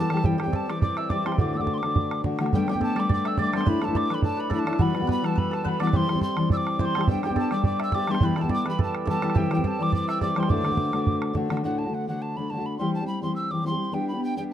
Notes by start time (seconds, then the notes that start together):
Already playing: B3 G4 A4 B4 D5 E5
0.00 G4 A5
0.10 E3 G3 B3 G4, bodhran
0.17 bodhran
0.22 C3 E3 G3 C4 G4 G5, bodhran
0.32 bodhran
0.38 E3 G3 C4 G4, bodhran
0.42 G4 G5
0.47 G3 C4, bodhran
0.53 A4 A5, bodhran
0.67 E3 G3 C4 G4 D5 D6, bodhran
0.82 D5 D6, bodhran
0.97 E5 E6, bodhran
1.08 E3 G3 C4 G4 D5 D6, bodhran
1.24 E3 G3 C4 G4 C5 C6, bodhran
1.32 bodhran
1.38 D2 A2 D3 A3 D4 F#4 D5 D6, bodhran
1.46 bodhran
1.53 D3 A3 D4 F#4 E6
1.59 D3 A3 D4 F#4 D6, bodhran
1.67 bodhran
1.74 C6
1.78 D3 D6
1.83 A3 D4 F#4, bodhran
1.96 bodhran
2.11 bodhran
2.23 D3 A3 D4 F#4, bodhran
2.38 D3 A3 D4 F#4, bodhran
2.46 bodhran
2.53 G3 A3 B3 D4 G4 G5, bodhran
2.60 bodhran
2.67 G3 A3 B3 D4 G4, bodhran
2.71 D4 G5
2.75 A3 B3, bodhran
2.81 A4 A5, bodhran
2.95 G3 A3 B3 D4 D5, bodhran
3.00 D6
3.09 D5, bodhran
3.14 D6
3.25 E5 E6, bodhran
3.37 G3 A3 B3 D4 D5 D6, bodhran
3.53 G3 A3 B3 D4 C5 C6, bodhran
3.61 bodhran
3.65 F#3 A3 D4 E4 B4 B5, bodhran
3.75 bodhran
3.79 F#3 A3 D4 E4 A4, bodhran
3.85 E4 A5, bodhran
3.89 A3 D4
3.95 D5 D6, bodhran
4.10 F#3 A3 D4 E4 B4, bodhran
4.14 B5
4.22 A4 A5, bodhran
4.37 B4 B5
4.50 F#3 A3 D4 E4 A4, bodhran
4.54 B5
4.59 A5
4.65 F#3 A3 D4 E4, bodhran
4.73 bodhran
4.79 E3 G3 B3 F#4 B4 B5, bodhran
4.87 bodhran
4.94 E3 G3 B3 F#4, bodhran
5.00 G3 B3 F#4, bodhran
5.07 B4, bodhran
5.11 B5
5.22 E3 G3 B3 F#4 A4, bodhran
5.26 A5
5.35 B4 B5, bodhran
5.51 A4 A5, bodhran
5.63 E3 G3 B3 F#4 B4, bodhran
5.69 B5
5.79 E3 G3 B3 F#4 D5 D6, bodhran
5.87 bodhran
5.92 C3 E3 G3 C4 G4 C5, bodhran
5.96 C6
6.07 E3 G3 C4 G4, bodhran
6.13 G3 C4 G4, bodhran
6.21 C5 C6, bodhran
6.36 E3 G3 C4 G4, bodhran
6.50 D5 E6, bodhran
6.57 D6
6.67 bodhran
6.78 E3 G3 C4 G4 C5 D6, bodhran
6.85 C6
6.95 E3 G3 C4 G4 A4, bodhran
7.01 bodhran
7.08 G3 B3 D4 G4 G5, bodhran
7.16 bodhran
7.22 G3 B3 D4 G4 G5, bodhran
7.28 B3 D4 G4, bodhran
7.36 A4 A5, bodhran
7.51 G3 B3 D4 G4 D5 D6, bodhran
7.64 D5 D6, bodhran
7.79 E5 E6, bodhran
7.92 G3 B3 D4 G4 D5 D6, bodhran
8.07 G3 B3 D4 G4 C5 C6, bodhran
8.15 bodhran
8.20 E3 G3 B3 G4 B4, bodhran
8.25 B5
8.29 bodhran
8.35 E3 G3 B3 G4 A4, bodhran
8.41 G3 B3 G4 A5, bodhran
8.49 D5, bodhran
8.54 D6
8.64 E3 G3 B3 G4 B4, bodhran
8.70 B5
8.78 A4, bodhran
8.83 A5
8.95 bodhran
9.05 E3 G3 B3 A4, bodhran
9.09 G4 A5
9.21 E3 G3 B3 G4 A4, bodhran
9.30 bodhran
9.35 C3 E3 G3 C4 G4 G5, bodhran
9.50 E3 G3 C4 G4, bodhran
9.54 G4 G5
9.58 G3 C4, bodhran
9.64 A4 A5, bodhran
9.79 E3 G3 C4 G4 D5 D6
9.92 D5 D6, bodhran
10.08 E5 E6, bodhran
10.20 E3 G3 C4 G4 D5 D6, bodhran
10.35 E3 G3 C4 G4 C5, bodhran
10.40 C6, bodhran
10.49 D2 A2 D3 A3 D4 F#4 D5 D6, bodhran
10.57 bodhran
10.63 D3 A3 D4 F#4, bodhran
10.71 D3 A3 D4 F#4, bodhran
10.77 bodhran
10.92 D3 A3 D4 F#4, bodhran
11.07 bodhran
11.22 bodhran
11.33 D3 A3 D4 F#4, bodhran
11.49 D3 A3 D4 F#4, bodhran
11.57 bodhran
11.63 D2 A2 D3 A3 D4 F#4 F#5
11.79 A5
11.86 D3 A3 D4 F#4
11.94 F#5
12.08 D3 A3 D4 F#4 F#5
12.22 A5
12.37 D3 A3 D4 F#4 B5
12.50 D3 A3 D4 F#4 A5
12.57 D3 A3 D4 F#4
12.66 B5
12.78 E3 G3 C4 G4 C6
12.95 A5
13.01 G3 C4 G4
13.07 B5
13.22 E3 G3 C4 G4 C6
13.36 E6
13.50 E3 G3 C4 G4 D6
13.64 E3 G3 C4 G4 C6
13.71 G3 C4 G4
13.92 G3 B3 D4 G4 G5
14.08 B5
14.13 B3 D4 G4
14.24 G5
14.36 G3 B3 D4 G4 G5